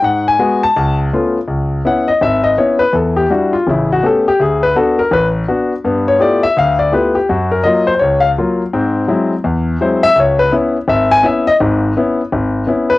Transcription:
X:1
M:4/4
L:1/8
Q:"Swing" 1/4=166
K:C#phr
V:1 name="Grand piano"
f g2 a2 z3 | [K:C#m] z2 f d e d c B | A =G z ^E =E F A G | G B A ^A B z3 |
z c =d e =f d B =G | F ^A d ^B [Bc] ^e z2 | z6 ^B e | c B z2 e g e d |
z6 z B |]
V:2 name="Grand piano"
G,,2 [G,B,F] z C,,2 [A,B,C^E] z | [K:C#m] C,,2 [B,CE] z G,,,2 [B,CE] z | [E,,E,]2 [=G,=DEF] z [A,,,C,]2 [A,B,C=G] z | =D,,2 [B,=DF] z A,,,2 [B,DF] z |
[=G,,B,]2 [A,B,E=F=G] z =D,,2 [A,B,EFG] z | F,,2 [F,^A,^E] z C,,2 [F,A,E] z | [G,,^B,]2 [F,G,B,E] z E,,2 [F,G,B,E] z | C,,2 [B,CE] z G,,,2 [B,CE] z |
[G,,,G,,]2 [B,CE] z G,,,2 [B,CE] z |]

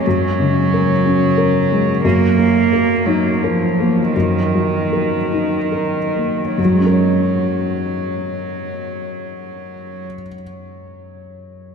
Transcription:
X:1
M:6/8
L:1/8
Q:3/8=49
K:F#
V:1 name="Felt piano"
[F,,G,] C, A C A G, | F,, A, A D A A, | F,, F, A D A A, | [F,,F,G,CAc]6- |
[F,,F,G,CAc]6 |]
V:2 name="Cello" clef=bass
F,6 | A,3 F, E,2 | D,6 | F,6- |
F,6 |]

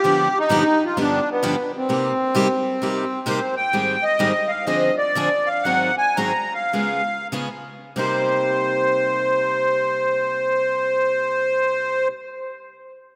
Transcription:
X:1
M:4/4
L:1/8
Q:"Swing" 1/4=118
K:Cm
V:1 name="Accordion"
G E2 F D =B,2 C- | C6 c g- | g e2 f e d2 f | _g a b f3 z2 |
c8- | c8 |]
V:2 name="Steel-string acoustic guitar"
[G,,D,F,=B,DG] z [G,,D,F,B,DG] z [G,,D,F,B,DG] z [G,,D,F,B,DG] z | [C,G,B,EG] z [C,G,B,EG] z [C,G,B,EG] z [C,G,B,EG] z | [A,,E,G,CEA] z [A,,E,G,CEA] z [D,F,CDA] z [D,F,CDA] z | [A,,E,_G,CEA] z [A,,E,G,CEA] z [_D,A,_CFA] z [D,A,CFA] z |
[C,G,B,EG]8- | [C,G,B,EG]8 |]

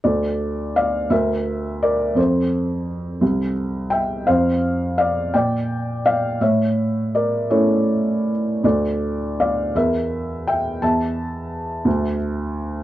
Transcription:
X:1
M:6/8
L:1/8
Q:3/8=56
K:Dm
V:1 name="Felt piano"
[Ad]2 [df] [Be]2 [Bd] | [Ac]4 z [eg] | [cf]2 [df] [dg]2 [df] | [^ce]2 [Bd] [Ac]2 z |
[Ad]2 [df] [Be]2 [eg] | [ea]4 z2 |]
V:2 name="Felt piano" clef=bass
D,,3 D,,3 | F,,3 C,,3 | F,,3 B,,3 | A,,3 [A,^CE]3 |
D,,3 E,,3 | E,,3 D,,3 |]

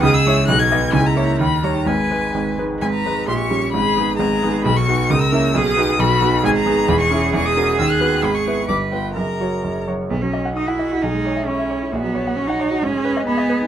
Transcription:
X:1
M:2/4
L:1/16
Q:1/4=132
K:G#m
V:1 name="Violin"
d' e'3 f' g'3 | g a3 b2 a2 | g6 z2 | g a3 ^b _d'3 |
b4 a4 | b c'3 d' e'3 | d'4 b4 | [K:B] g a3 b c'3 |
c' d'3 e' f'3 | b c'3 =d'2 =g2 | a6 z2 | z4 F4 |
G4 E4 | F8 | G4 G4 |]
V:2 name="Cello"
G4 D4 | E4 D4 | B6 z2 | B4 =G4 |
G4 G4 | F4 A4 | G4 F4 | [K:B] G8- |
G8- | G4 B4 | A6 z2 | B, C3 D E3 |
D4 C4 | A, B,3 C D3 | C4 B,4 |]
V:3 name="Grand piano"
[C,,C,]2 [G,Ec]2 [B,,,B,,]2 [B,Dd]2 | [C,,C,]2 [A,Ec]2 [D,,D,]2 [=G,Dc]2 | [G,,,G,,]2 [G,DB]2 [G,,,G,,]2 [G,DB]2 | [G,,,G,,]2 [G,DB]2 [_B,,,_B,,]2 [=G,_D=G]2 |
[G,,,G,,]2 [B,DG]2 [G,,,G,,]2 [B,DG]2 | [B,,,B,,]2 [B,DF]2 [C,,C,]2 [A,CE]2 | [B,,,B,,]2 [B,DF]2 [B,,,B,,]2 [B,DF]2 | [K:B] [G,,,G,,]2 [B,DG]2 [E,,,E,,]2 [CEG]2 |
[E,,,E,,]2 [CFA]2 [D,,D,]2 [B,FB]2 | [G,,,G,,]2 [B,EB]2 [=G,,,=G,,]2 [B,=FB]2 | [F,,,F,,]2 [F,Fc]2 [F,,,F,,]2 [F,Fc]2 | B,,, F, d f d' f d F |
B,,, G, c e c' e c E | A,,, F, c f c' f c F | G,, G, B d b d B D |]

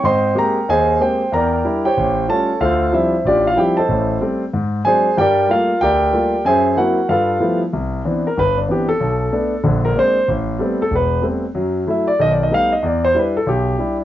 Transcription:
X:1
M:4/4
L:1/8
Q:"Swing" 1/4=188
K:Gdor
V:1 name="Grand piano"
[c_egc']2 [Bgb]2 [_Ace_a]2 [cg]2 | [Bdgb]3 [Gc_dg]3 [A^ca]2 | [FAcf]2 [ce]2 [DFGd] [Ff] [Gg] [Ac_ea]- | [Ac_ea]2 z4 [_Ac_a]2 |
[GBdg]2 [FBf]2 [GBdg]4 | [_Ac_f_a]2 [_GB_g]2 [=F=A=B=f]3 z | [K:C] z3 _B =B D G A- | A4 z _B c2 |
z3 A B2 z2 | z2 e d (3^d =d ^d f d | d c B A G3 z |]
V:2 name="Grand piano"
[_A,,C]2 [_A,B,CG] z _E,,2 [A,B,CG] z | E,,2 [G,DE] z A,,,2 [G,A,^C^E] z | D,,2 [F,G,CDE] z A,,,2 [F,G,CDE] z | [A,,,A,,]2 [G,A,C] z _A,,2 [_G,_A,CD] z |
[G,,G,]2 [G,A,B,F] z D,,2 [G,A,B,F] z | _G,,2 [_G,B,C_F] z =G,,2 [=F,=G,A,=B,E] z | [K:C] C,,2 [E,B,CD] z G,,,2 [E,B,CD] z | B,,,2 [A,B,D] z [_B,,,D,]2 [_A,_B,CD] z |
A,,,2 [G,A,B,C] z E,,,2 [G,A,B,C] z | [^F,,^F,]2 [F,A,E] z [B,,,^D,]2 [G,A,B,^D] z | E,,2 [G,DE] z B,,,2 [G,DE] z |]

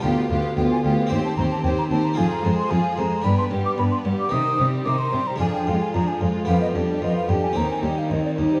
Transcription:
X:1
M:4/4
L:1/16
Q:1/4=112
K:Cdor
V:1 name="Flute"
g2 f2 g _a g f g =a b a g b a b | [K:Cm] a b2 c' a2 b2 =b c'2 d' b c'2 d' | e'3 z d' c'2 b a g2 a b a z2 | f e2 d e f g a b a g f e d2 c |]
V:2 name="Violin section"
G2 G2 G2 G2 c2 c2 c2 c2 | [K:Cm] A2 c2 A2 c2 =B2 G2 B2 G2 | c2 G2 c2 G2 A2 F2 A2 F2 | F2 G2 F2 G2 E2 G2 E2 G2 |]
V:3 name="Violin section"
F2 F2 F2 F2 G2 G2 G2 G2 | [K:Cm] F2 A2 F2 A2 D2 =B,2 D2 B,2 | E2 C2 E2 C2 D2 F2 D2 F2 | =B,2 D2 B,2 D2 C2 E2 C2 E2 |]
V:4 name="Viola section" clef=bass
=B,2 B,2 B,2 B,2 C2 C2 C2 C2 | [K:Cm] F,2 A,2 F,2 A,2 =B,2 G,2 B,2 G,2 | E,2 G,2 E,2 G,2 F,2 A,2 F,2 A,2 | F,2 G,2 F,2 G,2 E,2 G,2 E,2 G,2 |]
V:5 name="Harpsichord"
[=B,FG]8 [CGc]8 | [K:Cm] [CFA]8 [DG]8 | [EG]8 [A,DF]8 | [=B,G]8 [CG]8 |]
V:6 name="Harpsichord" clef=bass
D,,2 D,,2 D,,2 D,,2 E,,2 E,,2 E,,2 E,,2 | [K:Cm] F,,2 F,,2 F,,2 F,,2 G,,2 G,,2 G,,2 G,,2 | C,2 C,2 C,2 C,2 F,,2 F,,2 F,,2 F,,2 | F,,2 F,,2 F,,2 F,,2 E,,2 E,,2 E,,2 E,,2 |]
V:7 name="Cello section" clef=bass
D,,2 D,,2 D,,2 D,,2 E,,2 E,,2 E,,2 E,,2 | [K:Cm] F,,2 F,,2 F,,2 F,,2 G,,2 G,,2 G,,2 G,,2 | C,2 C,2 C,2 C,2 F,,2 F,,2 F,,2 F,,2 | F,,2 F,,2 F,,2 F,,2 E,,2 E,,2 E,,2 E,,2 |]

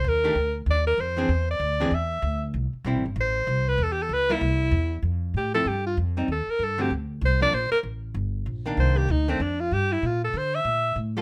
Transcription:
X:1
M:4/4
L:1/8
Q:"Swing" 1/4=192
K:Ephr
V:1 name="Alto saxophone"
_B3 z d B c2- | c d3 e3 z | z4 c3 B | (3A G A B E4- E |
[K:F] z2 G A G F z2 | A B A G z2 c d | c B z6 | c G _E C D F G =E |
F A c e3 z2 |]
V:2 name="Hollow-body jazz guitar"
z [_E,A,DG] z4 z [=E,CD^G] | z3 [E,CD^G] z4 | z2 [G,CE] z4 z | z3 [G,_B,E] z4 |
[K:F] z3 [F,CEA] z3 [G,C_E] | z3 [D,A,C_G] z3 [F,B,D] | z6 z [_E,B,D]- | [_E,B,D]2 z [E,A,D] z4 |
z6 z [G,B,FA] |]
V:3 name="Upright bass" clef=bass
_E,,2 D,,2 E,,2 F,,2 | E,,2 D,,2 E,,2 D,,2 | C,, z (3B,,, A,,, G,,, A,,,2 C,,2 | E,,2 ^C,,2 =C,,2 E,,2 |
[K:F] F,,2 A,,2 G,,2 F,,2 | _E,, z G,,2 D,,2 C,,2 | B,,, z A,,,2 G,,,2 B,,,2 | C,,2 D,,2 F,,2 G,,2 |
B,,2 D,2 B,,2 A,,2 |]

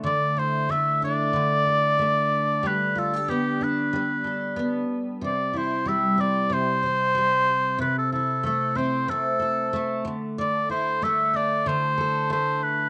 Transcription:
X:1
M:4/4
L:1/16
Q:"Swing 16ths" 1/4=93
K:Ddor
V:1 name="Oboe"
d2 c2 e2 d8- d2 | B2 A2 G2 B8 z2 | d2 c2 e2 d2 c8 | B A A2 A2 c2 A6 z2 |
d2 c2 e2 d2 c4 c2 B2 |]
V:2 name="Steel-string acoustic guitar"
D,2 E2 A,2 D2 D,2 A2 A,4 | G,2 F G B,2 D2 G,2 A2 B,4 | C,2 E2 G,2 C2 C,2 c2 G,4 | C,2 E2 A,2 C2 C,2 A2 A,2 D,2 |
D,2 E2 A,2 D2 D,2 A2 A,4 |]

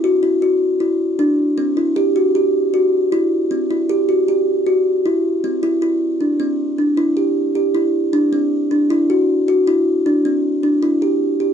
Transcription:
X:1
M:5/4
L:1/8
Q:1/4=156
K:Clyd
V:1 name="Kalimba"
F E F2 E2 D2 C E | G F G2 F2 E2 C E | G F G2 F2 E2 C E | E2 D C2 D E G2 G |
E2 D C2 D E F2 F | E2 D C2 D E G2 G |]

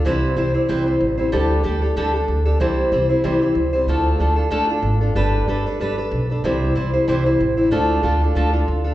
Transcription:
X:1
M:4/4
L:1/8
Q:"Swing" 1/4=188
K:C
V:1 name="Steel-string acoustic guitar"
[C,E,G,CEc]2 [G,CEc] [G,CEc] [C,E,G,CEc] [G,CEc]2 [G,CEc] | [D,G,DGA]2 [G,DGA] [DGA] [D,G,DGA] [DGA]2 [DGA] | [C,E,G,CEc]2 [G,CEc] [G,CEc] [C,E,G,CEc] [G,CEc]2 [G,CEc] | [D,A,DFA]2 [A,DFA] [DFA] [D,A,DFA] [DFA]2 [DFA] |
[G,DAB]2 [G,DAB] [DAB] [G,DAB] [DAB]2 [DAB] | [C,E,G,CEc]2 [G,CEc] [G,CEc] [C,E,G,CEc] [G,CEc]2 [G,CEc] | [D,A,DFA]2 [A,DFA] [DFA] [D,A,DFA] [DFA]2 [DFA] |]
V:2 name="Upright bass" clef=bass
C,,2 C,, z C,,2 A,,,2 | D,,2 D,, z D,,2 D,,2 | C,,2 C,, z C,,2 ^C,,2 | D,,2 D,, z D,,2 ^G,,,2 |
G,,,2 G,,, z G,,,2 B,,,2 | C,,2 C,, z C,,2 A,,,2 | D,,2 D,, z D,,2 D,,2 |]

